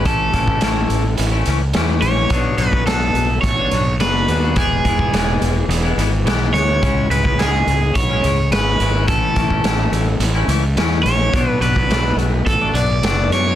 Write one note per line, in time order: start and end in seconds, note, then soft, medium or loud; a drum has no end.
0.04 0.30 A1 loud
0.04 0.61 A2 medium
0.04 0.32 E3 medium
0.04 0.19 E3 medium
0.04 0.19 G#3 medium
0.04 0.33 A3 medium
0.04 0.33 C#4 loud
0.04 0.19 C#4 medium
0.04 0.18 E4 medium
0.04 0.34 E4 medium
0.04 1.15 A4 medium
0.04 kick loud
0.04 closed hi-hat medium
0.33 0.59 A1 medium
0.33 0.61 E3 medium
0.33 0.49 A3 medium
0.33 0.47 C#4 medium
0.33 0.46 E4 medium
0.33 kick medium
0.33 closed hi-hat medium
0.47 0.62 A3 medium
0.47 0.62 C#4 medium
0.47 0.63 E4 medium
0.47 kick medium
0.61 0.88 A1 medium
0.61 1.32 A2 medium
0.61 0.80 E3 medium
0.61 1.04 E3 medium
0.61 0.80 G#3 medium
0.61 1.04 A3 medium
0.61 0.80 C#4 medium
0.61 1.04 C#4 medium
0.61 0.80 E4 medium
0.61 1.03 E4 medium
0.61 snare medium
0.61 closed hi-hat medium
0.90 1.15 A1 medium
0.90 closed hi-hat medium
1.05 muted overdriven electric guitar stroke medium
1.17 1.44 A1 medium
1.17 1.30 E3 medium
1.17 1.30 G#3 medium
1.17 1.30 C#4 medium
1.17 1.29 E4 medium
1.17 closed hi-hat medium
1.30 1.50 E3 medium
1.30 1.50 G#3 medium
1.30 1.50 C#4 medium
1.30 1.47 C#4 medium
1.30 1.49 E4 medium
1.30 1.47 E4 medium
1.35 1.46 A3 medium
1.46 1.72 C#2 medium
1.46 1.61 E3 medium
1.46 1.61 A3 medium
1.46 1.60 C#4 medium
1.46 1.59 E4 medium
1.46 closed hi-hat medium
1.61 muted overdriven electric guitar stroke soft
1.73 2.01 E2 medium
1.73 2.29 A2 medium
1.73 1.92 E3 medium
1.73 2.02 E3 loud
1.73 1.92 G#3 medium
1.73 2.02 A3 medium
1.73 1.92 C#4 medium
1.73 2.03 C#4 medium
1.73 1.92 E4 medium
1.73 snare loud
1.73 closed hi-hat medium
1.77 2.04 E4 medium
2.02 2.28 A#1 medium
2.02 2.29 E3 medium
2.02 2.17 A3 medium
2.02 2.16 C#4 medium
2.02 2.15 E4 medium
2.02 2.55 C#5 medium
2.02 closed hi-hat medium
2.16 2.30 A3 medium
2.16 2.29 C#4 medium
2.16 2.29 E4 medium
2.30 2.56 B1 loud
2.30 2.85 B2 medium
2.30 2.44 F#3 medium
2.30 2.58 F#3 medium
2.30 2.43 A3 medium
2.30 2.59 B3 medium
2.30 2.43 D4 medium
2.30 2.59 D4 loud
2.30 2.60 F#4 loud
2.30 2.43 A4 medium
2.30 kick loud
2.30 closed hi-hat medium
2.58 2.84 B1 medium
2.58 2.86 F#3 medium
2.58 2.75 B3 medium
2.58 2.73 D4 medium
2.58 2.72 F#4 medium
2.58 2.86 B4 medium
2.58 closed hi-hat medium
2.73 2.87 B3 medium
2.73 2.87 D4 medium
2.73 2.88 F#4 medium
2.73 kick medium
2.86 3.12 B1 medium
2.86 3.57 B2 medium
2.86 3.05 F#3 medium
2.86 3.30 F#3 medium
2.86 3.05 A3 medium
2.86 3.30 B3 medium
2.86 3.05 D4 medium
2.86 3.29 D4 medium
2.86 3.29 F#4 loud
2.86 3.41 A4 medium
2.86 3.06 A4 medium
2.86 snare loud
2.86 closed hi-hat medium
3.14 3.40 B1 medium
3.14 closed hi-hat medium
3.30 muted overdriven electric guitar stroke medium
3.41 3.69 A1 medium
3.41 3.58 F#3 medium
3.41 3.57 A3 medium
3.41 3.57 D4 medium
3.41 3.56 A4 medium
3.41 3.95 C#5 loud
3.41 kick medium
3.41 closed hi-hat medium
3.57 3.77 F#3 medium
3.57 3.76 A3 medium
3.57 3.71 B3 medium
3.57 3.76 D4 medium
3.57 3.71 D4 medium
3.57 3.72 F#4 medium
3.57 3.76 A4 medium
3.71 3.98 B1 medium
3.71 3.86 F#3 medium
3.71 3.86 B3 medium
3.71 3.85 D4 medium
3.71 3.85 F#4 medium
3.71 closed hi-hat medium
3.86 muted overdriven electric guitar stroke soft
3.99 4.26 F#1 medium
3.99 4.54 B2 loud
3.99 4.18 F#3 medium
3.99 4.26 F#3 medium
3.99 4.18 A3 medium
3.99 4.28 B3 loud
3.99 4.18 D4 medium
3.99 4.28 D4 loud
3.99 4.29 F#4 loud
3.99 4.19 A4 medium
3.99 4.59 B4 medium
3.99 snare loud
3.99 closed hi-hat medium
4.27 4.54 D#2 medium
4.27 4.54 F#3 medium
4.27 4.45 B3 medium
4.27 4.42 D4 medium
4.27 4.41 F#4 medium
4.27 closed hi-hat medium
4.42 4.56 B3 medium
4.42 4.55 D4 medium
4.42 4.55 F#4 medium
4.56 4.82 E1 loud
4.56 4.85 E3 medium
4.56 4.70 F#3 medium
4.56 4.85 G#3 medium
4.56 4.70 B3 medium
4.56 4.86 B3 medium
4.56 4.70 E4 medium
4.56 4.87 E4 medium
4.56 5.66 G#4 medium
4.56 4.69 G#4 medium
4.56 kick loud
4.56 closed hi-hat medium
4.84 5.10 E1 medium
4.84 5.12 E3 medium
4.84 5.02 G#3 medium
4.84 5.01 B3 medium
4.84 4.99 E4 medium
4.84 kick medium
4.84 closed hi-hat medium
4.99 5.14 G#3 medium
4.99 5.15 B3 medium
4.99 5.15 E4 medium
4.99 kick medium
5.13 5.39 E1 medium
5.13 5.97 E3 medium
5.13 5.31 F#3 medium
5.13 5.57 G#3 medium
5.13 5.31 B3 medium
5.13 5.55 B3 medium
5.13 5.32 E4 medium
5.13 5.56 E4 medium
5.13 5.32 G#4 medium
5.13 snare medium
5.13 closed hi-hat medium
5.41 5.67 E1 medium
5.41 closed hi-hat medium
5.56 muted overdriven electric guitar stroke medium
5.68 5.94 E1 medium
5.68 5.83 F#3 medium
5.68 5.83 B3 medium
5.68 5.83 E4 medium
5.68 5.82 G#4 medium
5.68 closed hi-hat medium
5.83 6.03 F#3 medium
5.83 5.98 G#3 medium
5.83 5.98 B3 medium
5.83 6.02 B3 medium
5.83 5.99 E4 medium
5.83 6.02 E4 medium
5.83 6.02 G#4 medium
5.97 6.23 G#1 medium
5.97 6.26 E3 medium
5.97 6.12 G#3 medium
5.97 6.11 B3 medium
5.97 6.11 E4 medium
5.97 closed hi-hat medium
6.12 muted overdriven electric guitar stroke soft
6.25 6.51 B1 medium
6.25 6.53 E3 medium
6.25 6.44 F#3 medium
6.25 6.54 G#3 medium
6.25 6.44 B3 medium
6.25 6.54 B3 loud
6.25 6.44 E4 medium
6.25 6.55 E4 loud
6.25 6.44 G#4 medium
6.25 snare loud
6.25 closed hi-hat medium
6.53 6.79 D2 medium
6.53 6.81 E3 medium
6.53 6.70 G#3 medium
6.53 6.69 B3 medium
6.53 6.68 E4 medium
6.53 7.11 C#5 medium
6.53 snare soft
6.53 closed hi-hat medium
6.68 6.82 G#3 medium
6.68 6.81 B3 medium
6.68 6.84 E4 medium
6.81 7.08 C#2 medium
6.81 6.96 C#3 medium
6.81 7.09 C#3 medium
6.81 6.96 G#3 medium
6.81 7.11 G#3 medium
6.81 6.96 B3 medium
6.81 7.12 C#4 medium
6.81 6.95 E4 medium
6.81 7.12 E4 medium
6.81 kick loud
6.81 closed hi-hat medium
6.97 muted clean electric guitar stroke soft
7.10 7.36 C#2 medium
7.10 7.37 C#3 medium
7.10 7.26 G#3 medium
7.10 7.25 C#4 medium
7.10 7.23 E4 medium
7.10 7.40 B4 medium
7.10 closed hi-hat medium
7.24 7.39 G#3 medium
7.24 7.40 C#4 medium
7.24 7.40 E4 medium
7.24 kick medium
7.38 7.64 C#2 medium
7.38 7.57 C#3 medium
7.38 8.09 C#3 medium
7.38 7.57 G#3 medium
7.38 7.81 G#3 medium
7.38 7.57 B3 medium
7.38 7.81 C#4 medium
7.38 7.57 E4 medium
7.38 7.81 E4 medium
7.38 7.97 G#4 medium
7.38 snare loud
7.38 closed hi-hat medium
7.67 7.93 C#2 medium
7.67 closed hi-hat medium
7.82 muted overdriven electric guitar stroke medium
7.95 8.21 B1 medium
7.95 8.10 C#3 medium
7.95 8.10 G#3 medium
7.95 8.09 B3 medium
7.95 8.09 E4 medium
7.95 8.52 C#5 medium
7.95 kick medium
7.95 closed hi-hat medium
8.09 8.29 C#3 medium
8.09 8.23 G#3 medium
8.09 8.29 G#3 medium
8.09 8.28 B3 medium
8.09 8.24 C#4 medium
8.09 8.24 E4 medium
8.09 8.28 E4 medium
8.23 8.50 C#2 medium
8.23 8.50 C#3 medium
8.23 8.37 G#3 medium
8.23 8.37 C#4 medium
8.23 8.37 E4 medium
8.23 closed hi-hat medium
8.38 muted overdriven electric guitar stroke soft
8.51 8.77 G#1 medium
8.51 8.78 C#3 medium
8.51 8.71 C#3 medium
8.51 8.79 G#3 medium
8.51 8.71 G#3 medium
8.51 8.71 B3 medium
8.51 8.80 C#4 loud
8.51 8.81 E4 medium
8.51 8.71 E4 medium
8.51 9.08 B4 medium
8.51 snare loud
8.51 closed hi-hat medium
8.79 9.06 G#1 medium
8.79 9.06 C#3 medium
8.79 8.95 G#3 medium
8.79 8.94 C#4 medium
8.79 8.93 E4 medium
8.79 closed hi-hat medium
8.94 9.08 G#3 medium
8.94 9.07 C#4 medium
8.94 9.06 E4 medium
9.07 9.34 A1 medium
9.07 9.62 A2 medium
9.07 9.22 E3 medium
9.07 9.33 E3 loud
9.07 9.22 G#3 medium
9.07 9.35 A3 medium
9.07 9.22 C#4 medium
9.07 9.35 C#4 medium
9.07 9.23 E4 medium
9.07 9.36 E4 loud
9.07 10.17 A4 medium
9.07 kick loud
9.07 closed hi-hat medium
9.24 muted clean electric guitar stroke medium
9.34 9.62 A1 loud
9.34 9.62 E3 medium
9.34 9.52 A3 medium
9.34 9.50 C#4 medium
9.34 9.49 E4 medium
9.34 kick medium
9.34 closed hi-hat medium
9.50 9.64 A3 medium
9.50 9.64 C#4 medium
9.50 9.64 E4 medium
9.50 kick medium
9.63 9.90 A1 medium
9.63 10.35 A2 medium
9.63 10.06 E3 medium
9.63 9.84 E3 medium
9.63 9.84 G#3 medium
9.63 10.06 A3 medium
9.63 10.05 C#4 medium
9.63 9.84 C#4 medium
9.63 10.05 E4 medium
9.63 9.84 E4 medium
9.63 snare loud
9.63 closed hi-hat medium
9.92 10.18 A1 medium
9.92 closed hi-hat medium
10.06 muted overdriven electric guitar stroke soft
10.20 10.46 A1 medium
10.20 10.36 E3 medium
10.20 10.35 G#3 medium
10.20 10.35 C#4 medium
10.20 10.34 E4 medium
10.20 closed hi-hat medium
10.35 10.55 E3 medium
10.35 10.54 G#3 medium
10.35 10.48 A3 medium
10.35 10.54 C#4 medium
10.35 10.49 C#4 medium
10.35 10.49 E4 medium
10.35 10.54 E4 medium
10.48 10.74 C#2 medium
10.48 10.63 E3 medium
10.48 10.62 A3 medium
10.48 10.62 C#4 medium
10.48 10.62 E4 medium
10.48 closed hi-hat medium
10.63 muted overdriven electric guitar stroke medium
10.76 11.03 E2 medium
10.76 11.32 A2 medium
10.76 10.96 E3 medium
10.76 11.03 E3 medium
10.76 10.96 G#3 medium
10.76 11.04 A3 medium
10.76 10.96 C#4 medium
10.76 11.05 C#4 loud
10.76 10.96 E4 medium
10.76 11.05 E4 loud
10.76 snare loud
10.76 closed hi-hat medium
11.03 11.32 A#1 medium
11.03 11.32 E3 medium
11.03 11.19 A3 medium
11.03 11.18 C#4 medium
11.03 11.16 E4 medium
11.03 11.50 C#5 medium
11.03 snare soft
11.03 closed hi-hat medium
11.18 11.33 A3 medium
11.18 11.32 C#4 medium
11.18 11.31 E4 medium
11.32 11.60 B1 loud
11.32 11.59 B2 medium
11.32 11.48 F#3 medium
11.32 11.60 F#3 medium
11.32 11.48 A3 medium
11.32 11.61 B3 medium
11.32 11.48 D4 medium
11.32 11.61 D4 loud
11.32 11.47 F#4 medium
11.32 kick loud
11.32 closed hi-hat medium
11.48 11.61 B4 medium
11.48 muted clean electric guitar stroke medium
11.60 11.87 B1 medium
11.60 11.88 B2 medium
11.60 11.76 F#3 medium
11.60 11.75 B3 medium
11.60 11.74 D4 medium
11.60 12.15 B4 medium
11.60 closed hi-hat medium
11.75 11.89 F#3 medium
11.75 11.90 B3 medium
11.75 11.90 D4 medium
11.75 kick medium
11.89 12.16 B1 medium
11.89 12.61 B2 medium
11.89 12.09 F#3 medium
11.89 12.32 F#3 medium
11.89 12.09 A3 medium
11.89 12.32 B3 medium
11.89 12.09 D4 medium
11.89 12.31 D4 medium
11.89 12.09 F#4 medium
11.89 snare loud
11.89 closed hi-hat medium
12.16 12.44 B1 medium
12.16 closed hi-hat medium
12.33 muted overdriven electric guitar stroke medium
12.46 12.73 A1 medium
12.46 12.61 F#3 medium
12.46 12.61 A3 medium
12.46 12.61 D4 medium
12.46 12.60 F#4 medium
12.46 12.76 A4 medium
12.46 kick medium
12.46 closed hi-hat medium
12.61 12.81 F#3 medium
12.61 12.74 F#3 medium
12.61 12.80 A3 medium
12.61 12.75 B3 medium
12.61 12.76 D4 medium
12.61 12.80 D4 medium
12.61 12.80 F#4 medium
12.74 13.01 B1 medium
12.74 13.02 B2 medium
12.74 12.89 F#3 medium
12.74 12.88 B3 medium
12.74 12.88 D4 medium
12.74 13.33 D5 loud
12.74 closed hi-hat medium
12.89 muted overdriven electric guitar stroke soft
13.02 13.29 F#1 medium
13.02 13.30 B2 loud
13.02 13.22 F#3 medium
13.02 13.31 F#3 loud
13.02 13.23 A3 medium
13.02 13.32 B3 medium
13.02 13.23 D4 medium
13.02 13.33 D4 loud
13.02 13.23 F#4 medium
13.02 snare loud
13.02 closed hi-hat medium
13.29 13.55 F#2 medium
13.29 13.55 B2 medium
13.29 13.46 F#3 medium
13.29 13.46 B3 medium
13.29 13.55 C#5 medium
13.29 closed hi-hat medium
13.34 13.44 D4 medium
13.46 13.55 F#3 medium
13.46 13.55 B3 medium
13.46 13.55 D4 medium